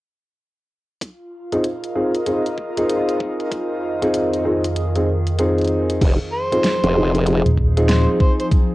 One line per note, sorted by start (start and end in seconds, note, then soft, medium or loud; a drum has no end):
1.01 6.01 F4 medium
1.01 kick loud
1.01 closed hi-hat medium
1.45 6.01 A#4 medium
1.52 1.61 C4 medium
1.52 1.61 D#4 medium
1.52 1.61 F4 medium
1.52 1.61 G#4 medium
1.52 closed hi-hat soft
1.61 6.01 D#5 medium
1.61 closed hi-hat medium
1.84 closed hi-hat soft
1.95 2.10 C4 medium
1.95 2.11 D#4 medium
1.95 2.11 F4 medium
1.95 2.10 G#4 medium
2.15 closed hi-hat medium
2.26 2.42 C4 medium
2.26 2.42 D#4 medium
2.26 2.42 F4 medium
2.26 2.42 G#4 medium
2.26 closed hi-hat medium
2.46 closed hi-hat soft
2.58 kick medium
2.77 3.97 C4 medium
2.77 3.97 D#4 medium
2.77 3.97 F4 medium
2.77 3.97 G#4 loud
2.77 closed hi-hat medium
2.89 closed hi-hat medium
3.09 closed hi-hat soft
3.20 kick loud
3.40 closed hi-hat soft
3.50 5.99 F2 medium
3.50 5.99 D#3 medium
3.50 5.98 G#4 medium
3.50 kick loud
3.50 closed hi-hat medium
4.02 4.42 C4 medium
4.02 4.42 D#4 medium
4.02 4.42 F4 medium
4.02 4.42 G#4 medium
4.02 closed hi-hat medium
4.14 closed hi-hat medium
4.33 closed hi-hat soft
4.45 4.60 C4 medium
4.45 4.60 D#4 medium
4.45 4.60 F4 medium
4.45 4.60 G#4 medium
4.64 closed hi-hat medium
4.76 closed hi-hat medium
4.96 5.05 C4 medium
4.96 5.05 D#4 medium
4.96 5.05 F4 medium
4.96 5.05 G#4 medium
4.96 closed hi-hat soft
5.27 closed hi-hat medium
5.39 6.00 C4 medium
5.39 6.00 D#4 medium
5.39 6.00 F4 medium
5.39 6.00 G#4 loud
5.39 closed hi-hat medium
5.58 closed hi-hat soft
5.61 closed hi-hat soft
5.64 closed hi-hat soft
5.67 closed hi-hat soft
5.90 closed hi-hat medium
6.00 6.18 F1 loud
6.00 8.75 F3 medium
6.00 8.75 D#4 medium
6.00 8.75 G#4 medium
6.00 kick loud
6.00 closed hi-hat medium
6.00 crash medium
6.33 7.22 C5 loud
6.52 6.61 C4 medium
6.52 6.61 D#4 medium
6.52 6.61 F4 medium
6.52 6.61 G#4 medium
6.52 closed hi-hat medium
6.64 snare loud
6.64 closed hi-hat medium
6.84 7.43 F1 medium
6.84 closed hi-hat soft
6.95 7.10 C4 medium
6.95 7.10 D#4 medium
6.95 7.10 F4 medium
6.95 7.10 G#4 medium
7.15 closed hi-hat medium
7.26 7.42 C4 medium
7.26 7.42 D#4 medium
7.26 7.42 F4 medium
7.26 7.42 G#4 medium
7.26 closed hi-hat medium
7.46 8.05 D#1 medium
7.46 closed hi-hat soft
7.58 kick medium
7.77 8.75 C4 medium
7.77 8.75 D#4 medium
7.77 8.75 F4 medium
7.77 8.75 G#4 loud
7.77 closed hi-hat medium
7.89 8.08 C5 medium
7.89 snare loud
7.89 closed hi-hat medium
8.20 8.33 C5 medium
8.20 kick loud
8.39 8.47 C5 medium
8.39 closed hi-hat medium
8.51 kick loud
8.51 closed hi-hat medium